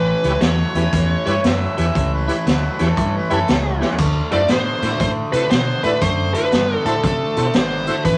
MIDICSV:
0, 0, Header, 1, 7, 480
1, 0, Start_track
1, 0, Tempo, 509338
1, 1841, Time_signature, 4, 2, 24, 8
1, 7706, End_track
2, 0, Start_track
2, 0, Title_t, "Lead electric guitar"
2, 0, Program_c, 0, 29
2, 0, Note_on_c, 0, 71, 80
2, 391, Note_off_c, 0, 71, 0
2, 395, Note_on_c, 0, 73, 72
2, 1322, Note_off_c, 0, 73, 0
2, 4078, Note_on_c, 0, 74, 97
2, 4245, Note_off_c, 0, 74, 0
2, 4249, Note_on_c, 0, 72, 85
2, 4693, Note_off_c, 0, 72, 0
2, 4720, Note_on_c, 0, 72, 75
2, 4804, Note_off_c, 0, 72, 0
2, 5018, Note_on_c, 0, 71, 79
2, 5186, Note_off_c, 0, 71, 0
2, 5190, Note_on_c, 0, 72, 90
2, 5501, Note_off_c, 0, 72, 0
2, 5505, Note_on_c, 0, 71, 84
2, 5667, Note_off_c, 0, 71, 0
2, 5671, Note_on_c, 0, 72, 89
2, 5974, Note_off_c, 0, 72, 0
2, 5978, Note_on_c, 0, 71, 87
2, 6461, Note_on_c, 0, 69, 80
2, 6478, Note_off_c, 0, 71, 0
2, 7116, Note_on_c, 0, 72, 81
2, 7131, Note_off_c, 0, 69, 0
2, 7580, Note_off_c, 0, 72, 0
2, 7584, Note_on_c, 0, 71, 82
2, 7706, Note_off_c, 0, 71, 0
2, 7706, End_track
3, 0, Start_track
3, 0, Title_t, "Harmonica"
3, 0, Program_c, 1, 22
3, 1218, Note_on_c, 1, 73, 78
3, 1381, Note_on_c, 1, 76, 84
3, 1395, Note_off_c, 1, 73, 0
3, 1994, Note_off_c, 1, 76, 0
3, 2018, Note_on_c, 1, 71, 72
3, 2663, Note_on_c, 1, 69, 75
3, 2677, Note_off_c, 1, 71, 0
3, 2964, Note_off_c, 1, 69, 0
3, 2987, Note_on_c, 1, 71, 67
3, 3131, Note_off_c, 1, 71, 0
3, 3140, Note_on_c, 1, 69, 84
3, 3598, Note_off_c, 1, 69, 0
3, 7706, End_track
4, 0, Start_track
4, 0, Title_t, "Tonewheel organ"
4, 0, Program_c, 2, 16
4, 223, Note_on_c, 2, 67, 63
4, 224, Note_on_c, 2, 64, 66
4, 230, Note_on_c, 2, 71, 63
4, 235, Note_on_c, 2, 73, 75
4, 309, Note_off_c, 2, 67, 0
4, 310, Note_off_c, 2, 64, 0
4, 313, Note_off_c, 2, 71, 0
4, 315, Note_off_c, 2, 73, 0
4, 708, Note_on_c, 2, 64, 70
4, 710, Note_on_c, 2, 67, 64
4, 715, Note_on_c, 2, 71, 61
4, 716, Note_on_c, 2, 73, 76
4, 793, Note_off_c, 2, 64, 0
4, 794, Note_off_c, 2, 67, 0
4, 796, Note_off_c, 2, 71, 0
4, 797, Note_off_c, 2, 73, 0
4, 1184, Note_on_c, 2, 64, 91
4, 1184, Note_on_c, 2, 67, 89
4, 1188, Note_on_c, 2, 71, 82
4, 1192, Note_on_c, 2, 73, 100
4, 1272, Note_off_c, 2, 64, 0
4, 1272, Note_off_c, 2, 67, 0
4, 1274, Note_off_c, 2, 71, 0
4, 1276, Note_off_c, 2, 73, 0
4, 1664, Note_on_c, 2, 64, 79
4, 1669, Note_on_c, 2, 67, 71
4, 1674, Note_on_c, 2, 71, 70
4, 1675, Note_on_c, 2, 73, 83
4, 1753, Note_off_c, 2, 64, 0
4, 1755, Note_off_c, 2, 67, 0
4, 1758, Note_off_c, 2, 71, 0
4, 1758, Note_off_c, 2, 73, 0
4, 2144, Note_on_c, 2, 64, 80
4, 2148, Note_on_c, 2, 67, 74
4, 2148, Note_on_c, 2, 71, 73
4, 2153, Note_on_c, 2, 73, 86
4, 2233, Note_off_c, 2, 64, 0
4, 2235, Note_off_c, 2, 67, 0
4, 2235, Note_off_c, 2, 71, 0
4, 2238, Note_off_c, 2, 73, 0
4, 2628, Note_on_c, 2, 64, 75
4, 2628, Note_on_c, 2, 67, 70
4, 2630, Note_on_c, 2, 71, 73
4, 2632, Note_on_c, 2, 73, 90
4, 2716, Note_off_c, 2, 64, 0
4, 2716, Note_off_c, 2, 67, 0
4, 2717, Note_off_c, 2, 71, 0
4, 2718, Note_off_c, 2, 73, 0
4, 3109, Note_on_c, 2, 64, 93
4, 3111, Note_on_c, 2, 67, 79
4, 3113, Note_on_c, 2, 71, 81
4, 3115, Note_on_c, 2, 73, 97
4, 3197, Note_off_c, 2, 64, 0
4, 3198, Note_off_c, 2, 67, 0
4, 3199, Note_off_c, 2, 71, 0
4, 3200, Note_off_c, 2, 73, 0
4, 3583, Note_on_c, 2, 64, 75
4, 3588, Note_on_c, 2, 67, 72
4, 3593, Note_on_c, 2, 73, 83
4, 3594, Note_on_c, 2, 71, 65
4, 3674, Note_off_c, 2, 64, 0
4, 3677, Note_off_c, 2, 67, 0
4, 3679, Note_off_c, 2, 71, 0
4, 3679, Note_off_c, 2, 73, 0
4, 4073, Note_on_c, 2, 64, 65
4, 4078, Note_on_c, 2, 66, 66
4, 4079, Note_on_c, 2, 69, 58
4, 4084, Note_on_c, 2, 72, 74
4, 4159, Note_off_c, 2, 64, 0
4, 4161, Note_off_c, 2, 66, 0
4, 4162, Note_off_c, 2, 69, 0
4, 4164, Note_off_c, 2, 72, 0
4, 4540, Note_on_c, 2, 66, 60
4, 4541, Note_on_c, 2, 64, 65
4, 4550, Note_on_c, 2, 69, 60
4, 4553, Note_on_c, 2, 72, 72
4, 4632, Note_off_c, 2, 66, 0
4, 4633, Note_off_c, 2, 64, 0
4, 4637, Note_off_c, 2, 69, 0
4, 4639, Note_off_c, 2, 72, 0
4, 5035, Note_on_c, 2, 64, 76
4, 5037, Note_on_c, 2, 66, 62
4, 5043, Note_on_c, 2, 69, 68
4, 5048, Note_on_c, 2, 72, 77
4, 5119, Note_off_c, 2, 64, 0
4, 5120, Note_off_c, 2, 66, 0
4, 5123, Note_off_c, 2, 69, 0
4, 5126, Note_off_c, 2, 72, 0
4, 5513, Note_on_c, 2, 64, 69
4, 5514, Note_on_c, 2, 66, 66
4, 5518, Note_on_c, 2, 69, 61
4, 5520, Note_on_c, 2, 74, 75
4, 5597, Note_off_c, 2, 64, 0
4, 5598, Note_off_c, 2, 66, 0
4, 5600, Note_off_c, 2, 69, 0
4, 5601, Note_off_c, 2, 74, 0
4, 5995, Note_on_c, 2, 64, 62
4, 5997, Note_on_c, 2, 66, 56
4, 5999, Note_on_c, 2, 69, 59
4, 6004, Note_on_c, 2, 72, 70
4, 6078, Note_off_c, 2, 64, 0
4, 6078, Note_off_c, 2, 66, 0
4, 6079, Note_off_c, 2, 69, 0
4, 6082, Note_off_c, 2, 72, 0
4, 6460, Note_on_c, 2, 64, 64
4, 6463, Note_on_c, 2, 66, 60
4, 6465, Note_on_c, 2, 69, 55
4, 6474, Note_on_c, 2, 72, 73
4, 6549, Note_off_c, 2, 64, 0
4, 6550, Note_off_c, 2, 66, 0
4, 6552, Note_off_c, 2, 69, 0
4, 6556, Note_off_c, 2, 72, 0
4, 6945, Note_on_c, 2, 66, 65
4, 6946, Note_on_c, 2, 64, 73
4, 6954, Note_on_c, 2, 69, 65
4, 6959, Note_on_c, 2, 72, 90
4, 7030, Note_off_c, 2, 66, 0
4, 7031, Note_off_c, 2, 64, 0
4, 7035, Note_off_c, 2, 69, 0
4, 7037, Note_off_c, 2, 72, 0
4, 7413, Note_on_c, 2, 66, 61
4, 7414, Note_on_c, 2, 64, 64
4, 7420, Note_on_c, 2, 69, 66
4, 7422, Note_on_c, 2, 72, 68
4, 7503, Note_off_c, 2, 66, 0
4, 7504, Note_off_c, 2, 64, 0
4, 7507, Note_off_c, 2, 69, 0
4, 7508, Note_off_c, 2, 72, 0
4, 7706, End_track
5, 0, Start_track
5, 0, Title_t, "Overdriven electric guitar"
5, 0, Program_c, 3, 29
5, 0, Note_on_c, 3, 45, 65
5, 0, Note_on_c, 3, 52, 78
5, 193, Note_off_c, 3, 45, 0
5, 196, Note_off_c, 3, 52, 0
5, 230, Note_on_c, 3, 45, 62
5, 234, Note_on_c, 3, 52, 72
5, 381, Note_off_c, 3, 45, 0
5, 383, Note_off_c, 3, 52, 0
5, 394, Note_on_c, 3, 45, 82
5, 402, Note_on_c, 3, 54, 89
5, 676, Note_off_c, 3, 45, 0
5, 680, Note_off_c, 3, 54, 0
5, 712, Note_on_c, 3, 45, 66
5, 717, Note_on_c, 3, 52, 82
5, 863, Note_off_c, 3, 45, 0
5, 865, Note_off_c, 3, 52, 0
5, 888, Note_on_c, 3, 45, 72
5, 893, Note_on_c, 3, 52, 83
5, 1164, Note_off_c, 3, 45, 0
5, 1167, Note_off_c, 3, 52, 0
5, 1196, Note_on_c, 3, 45, 74
5, 1198, Note_on_c, 3, 52, 81
5, 1345, Note_off_c, 3, 45, 0
5, 1347, Note_off_c, 3, 52, 0
5, 1363, Note_on_c, 3, 45, 76
5, 1369, Note_on_c, 3, 54, 76
5, 1643, Note_off_c, 3, 45, 0
5, 1646, Note_off_c, 3, 54, 0
5, 1671, Note_on_c, 3, 45, 62
5, 1677, Note_on_c, 3, 52, 79
5, 1824, Note_off_c, 3, 45, 0
5, 1827, Note_off_c, 3, 52, 0
5, 1845, Note_on_c, 3, 45, 71
5, 1847, Note_on_c, 3, 52, 68
5, 2124, Note_off_c, 3, 45, 0
5, 2125, Note_off_c, 3, 52, 0
5, 2154, Note_on_c, 3, 45, 54
5, 2157, Note_on_c, 3, 52, 72
5, 2306, Note_off_c, 3, 45, 0
5, 2308, Note_off_c, 3, 52, 0
5, 2320, Note_on_c, 3, 45, 66
5, 2324, Note_on_c, 3, 54, 90
5, 2602, Note_off_c, 3, 45, 0
5, 2604, Note_off_c, 3, 54, 0
5, 2627, Note_on_c, 3, 45, 65
5, 2636, Note_on_c, 3, 52, 73
5, 2783, Note_off_c, 3, 45, 0
5, 2788, Note_off_c, 3, 52, 0
5, 2801, Note_on_c, 3, 45, 75
5, 2807, Note_on_c, 3, 52, 79
5, 3083, Note_off_c, 3, 45, 0
5, 3086, Note_off_c, 3, 52, 0
5, 3122, Note_on_c, 3, 45, 67
5, 3124, Note_on_c, 3, 52, 69
5, 3271, Note_off_c, 3, 45, 0
5, 3272, Note_off_c, 3, 52, 0
5, 3289, Note_on_c, 3, 45, 66
5, 3291, Note_on_c, 3, 54, 71
5, 3567, Note_off_c, 3, 45, 0
5, 3568, Note_off_c, 3, 54, 0
5, 3593, Note_on_c, 3, 45, 63
5, 3600, Note_on_c, 3, 52, 66
5, 3746, Note_off_c, 3, 45, 0
5, 3750, Note_off_c, 3, 52, 0
5, 3757, Note_on_c, 3, 50, 64
5, 3763, Note_on_c, 3, 57, 78
5, 4041, Note_off_c, 3, 50, 0
5, 4044, Note_off_c, 3, 57, 0
5, 4064, Note_on_c, 3, 50, 60
5, 4065, Note_on_c, 3, 57, 66
5, 4222, Note_off_c, 3, 50, 0
5, 4222, Note_off_c, 3, 57, 0
5, 4233, Note_on_c, 3, 50, 82
5, 4237, Note_on_c, 3, 59, 90
5, 4518, Note_off_c, 3, 50, 0
5, 4521, Note_off_c, 3, 59, 0
5, 4547, Note_on_c, 3, 50, 65
5, 4547, Note_on_c, 3, 57, 67
5, 4697, Note_off_c, 3, 50, 0
5, 4703, Note_off_c, 3, 57, 0
5, 4709, Note_on_c, 3, 50, 62
5, 4714, Note_on_c, 3, 57, 80
5, 4996, Note_off_c, 3, 50, 0
5, 4998, Note_off_c, 3, 57, 0
5, 5027, Note_on_c, 3, 50, 71
5, 5031, Note_on_c, 3, 57, 69
5, 5182, Note_off_c, 3, 50, 0
5, 5184, Note_off_c, 3, 57, 0
5, 5192, Note_on_c, 3, 50, 65
5, 5193, Note_on_c, 3, 59, 88
5, 5477, Note_off_c, 3, 50, 0
5, 5477, Note_off_c, 3, 59, 0
5, 5495, Note_on_c, 3, 50, 58
5, 5502, Note_on_c, 3, 57, 76
5, 5656, Note_off_c, 3, 50, 0
5, 5659, Note_off_c, 3, 57, 0
5, 5668, Note_on_c, 3, 50, 74
5, 5675, Note_on_c, 3, 57, 75
5, 5954, Note_off_c, 3, 50, 0
5, 5957, Note_off_c, 3, 57, 0
5, 5978, Note_on_c, 3, 50, 68
5, 5983, Note_on_c, 3, 57, 74
5, 6136, Note_off_c, 3, 50, 0
5, 6139, Note_off_c, 3, 57, 0
5, 6147, Note_on_c, 3, 50, 70
5, 6157, Note_on_c, 3, 59, 83
5, 6433, Note_off_c, 3, 50, 0
5, 6438, Note_off_c, 3, 59, 0
5, 6456, Note_on_c, 3, 50, 56
5, 6466, Note_on_c, 3, 57, 73
5, 6614, Note_off_c, 3, 50, 0
5, 6619, Note_off_c, 3, 57, 0
5, 6638, Note_on_c, 3, 50, 66
5, 6638, Note_on_c, 3, 57, 78
5, 6917, Note_off_c, 3, 50, 0
5, 6917, Note_off_c, 3, 57, 0
5, 6949, Note_on_c, 3, 50, 59
5, 6954, Note_on_c, 3, 57, 80
5, 7099, Note_off_c, 3, 50, 0
5, 7102, Note_off_c, 3, 57, 0
5, 7120, Note_on_c, 3, 50, 77
5, 7125, Note_on_c, 3, 59, 91
5, 7397, Note_off_c, 3, 50, 0
5, 7399, Note_off_c, 3, 59, 0
5, 7430, Note_on_c, 3, 50, 71
5, 7436, Note_on_c, 3, 57, 67
5, 7579, Note_off_c, 3, 50, 0
5, 7582, Note_off_c, 3, 57, 0
5, 7601, Note_on_c, 3, 45, 67
5, 7604, Note_on_c, 3, 52, 85
5, 7706, Note_off_c, 3, 45, 0
5, 7706, Note_off_c, 3, 52, 0
5, 7706, End_track
6, 0, Start_track
6, 0, Title_t, "Fingered electric bass"
6, 0, Program_c, 4, 33
6, 0, Note_on_c, 4, 33, 89
6, 105, Note_off_c, 4, 33, 0
6, 224, Note_on_c, 4, 37, 78
6, 330, Note_off_c, 4, 37, 0
6, 388, Note_on_c, 4, 40, 84
6, 585, Note_off_c, 4, 40, 0
6, 704, Note_on_c, 4, 40, 83
6, 811, Note_off_c, 4, 40, 0
6, 875, Note_on_c, 4, 40, 83
6, 1071, Note_off_c, 4, 40, 0
6, 1191, Note_on_c, 4, 43, 78
6, 1296, Note_off_c, 4, 43, 0
6, 1358, Note_on_c, 4, 42, 91
6, 1553, Note_off_c, 4, 42, 0
6, 1678, Note_on_c, 4, 40, 86
6, 1782, Note_off_c, 4, 40, 0
6, 1843, Note_on_c, 4, 37, 84
6, 2143, Note_off_c, 4, 37, 0
6, 2319, Note_on_c, 4, 38, 72
6, 2515, Note_off_c, 4, 38, 0
6, 2640, Note_on_c, 4, 40, 81
6, 2744, Note_off_c, 4, 40, 0
6, 2802, Note_on_c, 4, 43, 77
6, 2997, Note_off_c, 4, 43, 0
6, 3119, Note_on_c, 4, 42, 82
6, 3223, Note_off_c, 4, 42, 0
6, 3283, Note_on_c, 4, 37, 86
6, 3583, Note_off_c, 4, 37, 0
6, 3755, Note_on_c, 4, 38, 88
6, 3952, Note_off_c, 4, 38, 0
6, 4074, Note_on_c, 4, 42, 75
6, 4180, Note_off_c, 4, 42, 0
6, 4238, Note_on_c, 4, 45, 80
6, 4434, Note_off_c, 4, 45, 0
6, 4544, Note_on_c, 4, 45, 84
6, 4653, Note_off_c, 4, 45, 0
6, 4710, Note_on_c, 4, 45, 85
6, 4908, Note_off_c, 4, 45, 0
6, 5024, Note_on_c, 4, 48, 77
6, 5132, Note_off_c, 4, 48, 0
6, 5196, Note_on_c, 4, 47, 87
6, 5392, Note_off_c, 4, 47, 0
6, 5503, Note_on_c, 4, 45, 72
6, 5611, Note_off_c, 4, 45, 0
6, 5670, Note_on_c, 4, 42, 83
6, 5972, Note_off_c, 4, 42, 0
6, 6150, Note_on_c, 4, 43, 80
6, 6347, Note_off_c, 4, 43, 0
6, 6457, Note_on_c, 4, 45, 83
6, 6566, Note_off_c, 4, 45, 0
6, 6631, Note_on_c, 4, 48, 88
6, 6827, Note_off_c, 4, 48, 0
6, 6949, Note_on_c, 4, 47, 83
6, 7053, Note_off_c, 4, 47, 0
6, 7117, Note_on_c, 4, 32, 84
6, 7415, Note_off_c, 4, 32, 0
6, 7585, Note_on_c, 4, 33, 90
6, 7706, Note_off_c, 4, 33, 0
6, 7706, End_track
7, 0, Start_track
7, 0, Title_t, "Drums"
7, 224, Note_on_c, 9, 42, 56
7, 318, Note_off_c, 9, 42, 0
7, 387, Note_on_c, 9, 42, 71
7, 394, Note_on_c, 9, 38, 94
7, 481, Note_off_c, 9, 42, 0
7, 489, Note_off_c, 9, 38, 0
7, 708, Note_on_c, 9, 42, 58
7, 802, Note_off_c, 9, 42, 0
7, 875, Note_on_c, 9, 36, 99
7, 875, Note_on_c, 9, 42, 88
7, 969, Note_off_c, 9, 36, 0
7, 970, Note_off_c, 9, 42, 0
7, 1191, Note_on_c, 9, 42, 55
7, 1285, Note_off_c, 9, 42, 0
7, 1355, Note_on_c, 9, 42, 82
7, 1363, Note_on_c, 9, 38, 98
7, 1450, Note_off_c, 9, 42, 0
7, 1457, Note_off_c, 9, 38, 0
7, 1674, Note_on_c, 9, 42, 65
7, 1769, Note_off_c, 9, 42, 0
7, 1841, Note_on_c, 9, 36, 94
7, 1841, Note_on_c, 9, 42, 78
7, 1935, Note_off_c, 9, 36, 0
7, 1935, Note_off_c, 9, 42, 0
7, 2156, Note_on_c, 9, 42, 58
7, 2251, Note_off_c, 9, 42, 0
7, 2324, Note_on_c, 9, 42, 67
7, 2332, Note_on_c, 9, 38, 88
7, 2419, Note_off_c, 9, 42, 0
7, 2426, Note_off_c, 9, 38, 0
7, 2630, Note_on_c, 9, 42, 57
7, 2637, Note_on_c, 9, 38, 29
7, 2724, Note_off_c, 9, 42, 0
7, 2731, Note_off_c, 9, 38, 0
7, 2802, Note_on_c, 9, 36, 107
7, 2804, Note_on_c, 9, 42, 71
7, 2896, Note_off_c, 9, 36, 0
7, 2898, Note_off_c, 9, 42, 0
7, 3114, Note_on_c, 9, 42, 52
7, 3208, Note_off_c, 9, 42, 0
7, 3279, Note_on_c, 9, 42, 71
7, 3286, Note_on_c, 9, 38, 99
7, 3373, Note_off_c, 9, 42, 0
7, 3381, Note_off_c, 9, 38, 0
7, 3595, Note_on_c, 9, 38, 53
7, 3689, Note_off_c, 9, 38, 0
7, 3698, Note_on_c, 9, 43, 75
7, 3754, Note_on_c, 9, 42, 77
7, 3754, Note_on_c, 9, 49, 74
7, 3758, Note_on_c, 9, 36, 101
7, 3792, Note_off_c, 9, 43, 0
7, 3849, Note_off_c, 9, 42, 0
7, 3849, Note_off_c, 9, 49, 0
7, 3852, Note_off_c, 9, 36, 0
7, 4066, Note_on_c, 9, 42, 58
7, 4160, Note_off_c, 9, 42, 0
7, 4224, Note_on_c, 9, 42, 72
7, 4232, Note_on_c, 9, 38, 92
7, 4318, Note_off_c, 9, 42, 0
7, 4326, Note_off_c, 9, 38, 0
7, 4545, Note_on_c, 9, 42, 57
7, 4553, Note_on_c, 9, 38, 31
7, 4640, Note_off_c, 9, 42, 0
7, 4647, Note_off_c, 9, 38, 0
7, 4709, Note_on_c, 9, 42, 78
7, 4713, Note_on_c, 9, 36, 97
7, 4803, Note_off_c, 9, 42, 0
7, 4807, Note_off_c, 9, 36, 0
7, 5024, Note_on_c, 9, 42, 62
7, 5118, Note_off_c, 9, 42, 0
7, 5187, Note_on_c, 9, 42, 77
7, 5195, Note_on_c, 9, 38, 108
7, 5281, Note_off_c, 9, 42, 0
7, 5289, Note_off_c, 9, 38, 0
7, 5498, Note_on_c, 9, 42, 60
7, 5592, Note_off_c, 9, 42, 0
7, 5666, Note_on_c, 9, 42, 80
7, 5671, Note_on_c, 9, 36, 95
7, 5761, Note_off_c, 9, 42, 0
7, 5766, Note_off_c, 9, 36, 0
7, 5978, Note_on_c, 9, 42, 59
7, 6073, Note_off_c, 9, 42, 0
7, 6144, Note_on_c, 9, 42, 69
7, 6152, Note_on_c, 9, 38, 92
7, 6238, Note_off_c, 9, 42, 0
7, 6246, Note_off_c, 9, 38, 0
7, 6460, Note_on_c, 9, 42, 58
7, 6555, Note_off_c, 9, 42, 0
7, 6629, Note_on_c, 9, 42, 78
7, 6630, Note_on_c, 9, 36, 100
7, 6723, Note_off_c, 9, 42, 0
7, 6725, Note_off_c, 9, 36, 0
7, 6942, Note_on_c, 9, 42, 62
7, 7036, Note_off_c, 9, 42, 0
7, 7101, Note_on_c, 9, 42, 74
7, 7108, Note_on_c, 9, 38, 104
7, 7195, Note_off_c, 9, 42, 0
7, 7202, Note_off_c, 9, 38, 0
7, 7415, Note_on_c, 9, 42, 54
7, 7509, Note_off_c, 9, 42, 0
7, 7583, Note_on_c, 9, 42, 76
7, 7585, Note_on_c, 9, 36, 92
7, 7677, Note_off_c, 9, 42, 0
7, 7679, Note_off_c, 9, 36, 0
7, 7706, End_track
0, 0, End_of_file